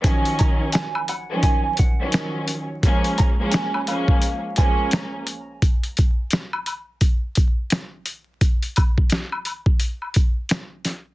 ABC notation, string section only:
X:1
M:4/4
L:1/16
Q:"Swing 16ths" 1/4=86
K:Ebm
V:1 name="String section" clef=bass
[E,F,G,D]6 z [E,F,G,D]3 z [E,F,G,D]4 z | [F,A,B,D]3 [F,A,B,D]3 [F,A,B,D]3 z [F,A,B,D]4 z2 | z16 | z16 |]